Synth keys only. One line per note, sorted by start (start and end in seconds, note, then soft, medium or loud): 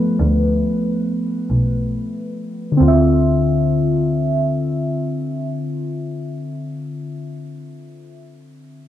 0.00 2.75 F3 medium
0.00 2.76 A3 soft
0.00 2.76 B3 medium
0.00 1.88 B4 medium
2.72 7.26 D3 medium
2.77 7.32 C4 medium
2.82 7.37 F4 medium
2.88 7.43 E5 medium